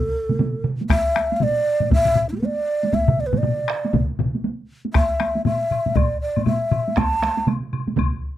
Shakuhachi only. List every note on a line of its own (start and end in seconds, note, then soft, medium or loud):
0.00 0.67 A4 medium
0.90 1.36 E5 medium
1.36 1.44 E5 medium
1.43 1.93 D5 medium
1.94 2.28 E5 medium
2.29 2.31 D4 soft
2.29 2.35 E4 soft
2.36 2.38 G4 soft
2.36 2.41 A4 soft
2.41 2.47 B4 soft
2.45 2.95 D5 medium
2.94 3.22 E5 medium
3.20 3.28 D5 medium
3.26 3.39 B4 medium
3.38 3.96 D5 medium
4.94 5.41 E5 medium
5.46 5.97 E5 medium
5.96 6.21 D5 medium
6.21 6.45 D5 medium
6.46 6.99 E5 medium
6.98 7.48 A5 medium